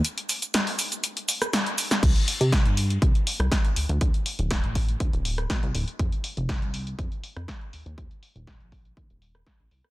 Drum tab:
CC |----------------|x---------------|----------------|----------------|
HH |xxoxxooxxxoxxxox|xxoxxxoxxxoxxxox|xxoxxxoxxxoxxxox|xxoxxxoxxxoxxxox|
SH |x-xxx-xxx-xxx-xx|----------------|----------------|----------------|
SD |----o------ro--o|----o------ro---|----o------ro---|----o------ro---|
BD |----------------|o---o---o---o---|o---o-o-o---o---|o---o---o---o---|

CC |----------------|
HH |xxoxxxoxxxoxxxo-|
SH |----------------|
SD |----o------ro--r|
BD |o---o-o-o---o---|